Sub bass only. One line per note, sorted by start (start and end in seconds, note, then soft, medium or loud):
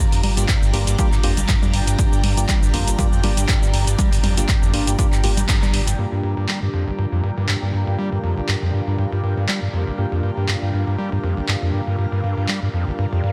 0.23 0.45 G1 loud
0.62 0.72 G1 medium
0.73 0.95 G1 loud
1.24 1.45 G1 medium
1.74 1.95 G1 loud
2.24 2.45 G1 loud
2.62 2.72 G1 medium
2.74 2.95 G1 loud
3.24 3.45 G1 medium
3.74 3.95 G1 loud
4.24 4.45 G1 loud
4.62 4.72 G1 medium
4.74 4.95 G1 loud
5.24 5.45 G1 medium
5.74 5.95 G1 medium